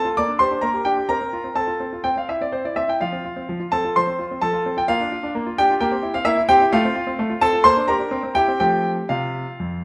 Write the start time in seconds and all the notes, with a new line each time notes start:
Already playing: A4
0.05 F4
0.17 A#3 D5 D6
0.28 D4
0.39 G4 C5 C6
0.51 D4
0.61 A#3 A#4 A#5
0.74 G4
0.85 D4 G4 G5
0.97 G4
1.09 C4 A#4 A#5
1.21 C4
1.33 F4
1.44 C4
1.55 C4 A4 A5
1.67 F4
1.80 C4
1.93 F4
2.04 C4 G5
2.16 C4 F5
2.29 E4 E5
2.41 C4 D5
2.52 C4 C5
2.64 E4 D5
2.76 C4 E5
2.88 E4 G5
3.01 F3 F4 F5
3.12 C4
3.25 F4
3.36 C4
3.49 F3
3.60 F4
3.72 C4 A4 A5
3.85 F4
3.96 F3 C5 C6
4.07 C4
4.19 F4
4.31 C4
4.41 F3 A4 A5
4.53 F4
4.66 C4
4.77 F4 G5
4.88 A#3 F4 F5
5.00 D4
5.12 F4
5.23 D4
5.35 A#3
5.46 F4
5.58 D4 G4 G5
5.70 F4
5.81 A#3 G4 G5
5.92 C4
6.03 E4
6.14 C4 F5
6.25 A#3 E4 E5
6.38 E4
6.49 C4 G4 G5
6.61 E4
6.72 A3 F4 F5
6.85 C4
6.96 F4
7.07 C4
7.19 A3
7.30 F4
7.41 C4 A4 A5
7.53 F4
7.64 A#3 C5 C6
7.77 D4
7.88 G4 A#4 A#5
7.99 D4
8.11 C4
8.23 C4
8.35 E4 G4 G5
8.48 C4
8.60 F3 A3 C4 G4 G5
9.09 C3 F4 F5
9.60 F2